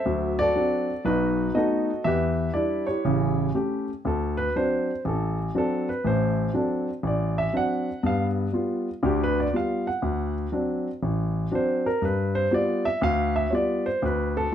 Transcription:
0.00 0.40 A4 medium
0.00 0.85 C5 medium
0.00 0.35 E5 medium
0.05 0.48 D2 medium
0.05 0.49 F#3 medium
0.39 1.02 F#4 medium
0.39 1.02 A4 medium
0.39 1.07 D5 loud
0.55 0.90 F#3 medium
0.55 0.90 C4 soft
0.55 0.90 D4 medium
1.05 1.48 B1 medium
1.05 1.54 D#4 medium
1.05 1.55 F#4 medium
1.05 1.56 B4 medium
1.55 1.89 A3 soft
1.55 1.89 B3 soft
1.55 1.90 D#4 medium
1.55 2.02 F#4 medium
1.55 2.02 A4 medium
1.55 2.06 D#5 medium
2.04 2.48 E2 medium
2.04 2.88 G4 medium
2.04 3.01 B4 medium
2.04 2.51 E5 medium
2.54 2.89 G3 medium
2.54 2.89 D4 soft
2.54 2.87 E4 medium
2.54 2.85 D5 medium
2.87 3.84 E4 soft
2.87 3.54 G4 soft
2.87 3.50 C#5 medium
3.05 3.48 A1 medium
3.05 3.48 C#3 medium
3.54 3.89 A3 soft
3.54 3.89 C#4 soft
3.54 3.89 G4 medium
4.05 4.48 D2 medium
4.05 4.37 A4 medium
4.37 4.54 B4 medium
4.56 4.89 F#3 soft
4.56 4.90 C4 soft
4.56 4.90 D4 medium
4.56 5.02 C5 medium
5.05 5.48 A1 medium
5.05 5.38 A4 medium
5.55 5.89 F#3 medium
5.55 5.89 C4 medium
5.55 5.89 D4 medium
5.55 5.88 A4 medium
5.89 6.04 B4 medium
6.05 6.47 A1 medium
6.05 6.47 A2 medium
6.05 6.52 C5 medium
6.54 6.88 F#3 medium
6.54 6.88 C4 medium
6.54 6.88 D4 medium
6.54 6.87 A4 medium
7.03 7.46 A1 medium
7.03 7.37 D5 medium
7.38 7.54 E5 medium
7.53 7.88 F#3 soft
7.53 7.88 C4 soft
7.53 7.88 D4 medium
7.53 8.01 F#5 medium
8.03 8.46 G2 medium
8.03 8.46 B3 medium
8.03 8.25 F5 medium
8.53 8.87 G3 soft
8.53 8.88 B3 soft
8.53 8.88 F4 medium
9.03 9.46 D2 medium
9.03 9.46 D3 medium
9.03 9.20 G4 medium
9.24 9.38 B4 medium
9.40 9.54 D5 medium
9.53 9.87 G3 medium
9.53 9.87 B3 soft
9.53 9.88 F4 medium
9.53 9.86 F5 medium
9.87 10.33 F#5 medium
10.02 10.46 D2 medium
10.52 10.87 F#3 medium
10.52 10.87 C4 soft
10.52 10.87 D4 medium
11.03 11.46 A1 medium
11.51 11.86 F#3 medium
11.51 11.86 C4 soft
11.51 11.87 D4 medium
11.51 11.86 C5 medium
11.86 12.02 A#4 medium
12.02 12.45 G2 medium
12.02 12.35 B4 medium
12.35 12.51 C5 medium
12.51 12.86 G3 medium
12.51 12.86 B3 soft
12.51 12.86 F4 medium
12.51 12.85 D5 medium
12.85 13.01 E5 medium
13.01 13.45 D2 medium
13.01 13.34 F5 loud
13.36 13.52 E5 medium
13.50 13.86 G3 medium
13.50 13.86 B3 soft
13.50 13.87 F4 medium
13.50 13.54 C#5 medium
13.55 13.85 D5 medium
13.86 14.02 C5 medium
14.02 14.45 D2 medium
14.02 14.35 B4 medium
14.37 14.52 A4 medium
14.52 14.55 G3 medium

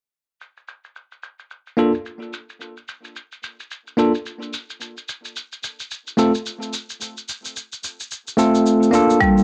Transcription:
0.41 shaker soft
0.57 shaker soft
0.68 shaker medium
0.84 shaker soft
0.96 shaker soft
1.12 shaker soft
1.23 shaker medium
1.39 shaker soft
1.51 shaker soft
1.67 shaker soft
1.77 1.91 A#3 medium
1.77 1.91 D4 medium
1.77 1.91 F4 medium
1.77 1.92 A4 medium
1.77 shaker medium
1.94 shaker soft
2.06 shaker soft
2.22 shaker soft
2.33 shaker medium
2.50 shaker soft
2.61 shaker soft
2.77 shaker soft
2.88 shaker medium
3.04 shaker soft
3.16 shaker soft
3.32 shaker soft
3.43 shaker medium
3.60 shaker soft
3.71 shaker soft
3.87 shaker soft
3.97 4.11 A#3 medium
3.97 4.11 D4 medium
3.97 4.12 F4 medium
3.97 4.12 A4 medium
3.97 shaker medium
4.15 shaker soft
4.26 shaker soft
4.42 shaker soft
4.54 shaker medium
4.70 shaker soft
4.81 shaker soft
4.97 shaker soft
5.09 shaker medium
5.25 shaker soft
5.36 shaker soft
5.52 shaker soft
5.64 shaker medium
5.80 shaker soft
5.91 shaker soft
6.08 shaker soft
6.17 6.31 A3 medium
6.17 6.31 C4 medium
6.17 6.32 F4 medium
6.17 6.32 A4 medium
6.17 shaker medium
6.35 shaker soft
6.46 shaker soft
6.62 shaker soft
6.74 shaker medium
6.90 shaker soft
7.01 shaker soft
7.18 shaker soft
7.29 shaker medium
7.45 shaker soft
7.57 shaker soft
7.73 shaker soft
7.84 shaker medium
8.00 shaker soft
8.11 shaker soft
8.28 shaker soft
8.37 8.90 A3 medium
8.37 8.90 C4 medium
8.37 8.91 F4 medium
8.37 8.91 A4 medium
8.37 shaker medium
8.55 shaker soft
8.66 shaker soft
8.83 shaker soft
8.91 9.44 A#3 medium
8.91 9.44 D4 medium
8.91 9.44 F4 medium
8.91 shaker medium
8.95 9.44 A4 loud
9.10 shaker soft
9.20 9.36 G3 medium
9.20 kick loud
9.20 shaker soft
9.38 shaker soft

